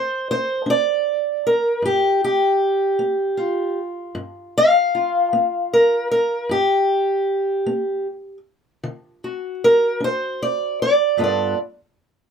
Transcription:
Already playing: D3 C5
0.31 C5
0.66 D4
0.70 D5
1.47 A#4
1.82 G2 G4
2.24 G4
2.99 B3
3.37 F4
4.15 G2
4.58 F5
4.95 F4
5.33 B3
5.73 A#4
6.11 A#4
6.49 G2 G4
7.66 B3
8.84 D3
9.24 F#4
9.64 A#4
10.00 D4 C5
10.42 D5
10.82 D5
11.17 G2 B3 F4 A4
11.24 D5

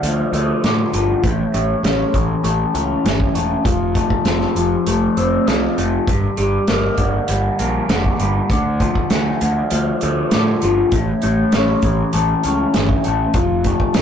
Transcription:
Already playing: D3 A3
0.03 D2 F3, closed hi-hat
0.33 D2 A3, closed hi-hat
0.64 A2 D3, snare, closed hi-hat
0.94 G1 F3, closed hi-hat
1.23 A1 A2, kick, closed hi-hat
1.54 A1 A3, closed hi-hat
1.83 A1 C#4, snare, closed hi-hat
2.14 A1 E3, kick, closed hi-hat
2.44 A1 A3, closed hi-hat
2.74 C#2 C#4, closed hi-hat
3.05 G1 E3, snare, closed hi-hat
3.20 kick
3.35 E1 A3, closed hi-hat
3.65 F1 F3, kick, closed hi-hat
3.95 A3, kick, closed hi-hat
4.10 kick
4.25 F1 C4, snare, closed hi-hat
4.41 snare
4.55 F1 F3, closed hi-hat
4.87 F1 A3, closed hi-hat
5.17 F1 C4, closed hi-hat
5.47 C2 F3, snare, closed hi-hat
5.78 F1 A3, closed hi-hat
6.08 G1 G2, kick, closed hi-hat
6.37 G1 G3, closed hi-hat
6.68 G1 A#3, snare, closed hi-hat
6.97 G1 D3, kick, closed hi-hat
7.28 G1 G3, closed hi-hat
7.59 A#1 A#3, closed hi-hat
7.89 F1 D3, snare, closed hi-hat
8.04 kick
8.20 G1 G3, closed hi-hat
8.50 D2 D3, kick, closed hi-hat
8.80 F3, kick, closed hi-hat
8.95 kick
9.10 D2 A3, snare, closed hi-hat
9.41 D2 D3, closed hi-hat
9.71 D2 F3, closed hi-hat
10.01 D2 A3, closed hi-hat
10.31 A2 D3, snare, closed hi-hat
10.62 G1 F3, closed hi-hat
10.92 A1 A2, kick, closed hi-hat
11.22 A1 A3, closed hi-hat
11.52 A1 C#4, snare, closed hi-hat
11.82 A1 E3, kick, closed hi-hat
12.13 A1 A3, closed hi-hat
12.43 C#2 C#4, closed hi-hat
12.74 G1 E3, snare, closed hi-hat
12.89 kick
13.04 A1 A3, closed hi-hat
13.34 F1 F3, kick, closed hi-hat
13.64 A3, kick, closed hi-hat
13.80 kick
13.94 F1 C4, snare, closed hi-hat

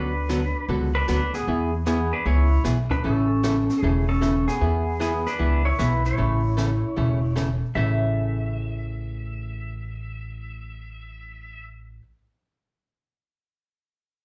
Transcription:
Already playing: D2 D3 F#3 B3 D4 F#4 A4 B4
0.29 D3 F#3 B3 F#4 A4, snare, hi-hat pedal
0.68 C#2 D3 F#3 B3 F#4 A4, brush sweep
0.95 D4 B4
1.08 D2 D3 F#3 B3 D4 F#4 A4 B4, snare, hi-hat pedal
1.34 B3 G#4, snare
1.47 E2 E3 B3 E4 G#4, brush sweep
1.86 E3 B3 E4 G#4, snare, hi-hat pedal
2.13 D4 B4
2.25 C#2 E3 B3 E4 G#4 C#5, brush sweep
2.64 B1 E3 B3 E4 G#4, snare, hi-hat pedal
2.90 D4 B4, kick
3.04 A1 C#3 E3 A3 C#4 A4, brush sweep
3.43 C#3 E3 A3 C#4 A4, snare, hi-hat pedal
3.69 snare
3.80 E1 C#3 E3 A3 C#4 G#4 A4, brush sweep
4.09 C#4 A4
4.21 C#3 E3 A3 C#4 A4, snare, hi-hat pedal
4.48 B3 G#4, snare
4.61 E2 E3 B3 E4 G#4, brush sweep
5.00 E3 B3 E4 G#4, snare, hi-hat pedal
5.26 D4 B4, snare
5.39 C#2 E3 B3 E4 G#4, brush sweep
5.65 E4 C#5
5.79 B1 E3 B3 E4 G#4 B4, snare, hi-hat pedal
6.05 E4 C#5, snare
6.17 A1 C#3 E3 A3 C#4 A4, brush sweep
6.57 C#3 E3 A3 C#4 A4, snare, hi-hat pedal
6.96 E1 C#3 E3 A3 C#4 A4, brush sweep
7.36 C#3 E3 A3 C#4 A4, snare, hi-hat pedal
7.75 A1 A2 C#3 E3 A3 C#4 A4 E5

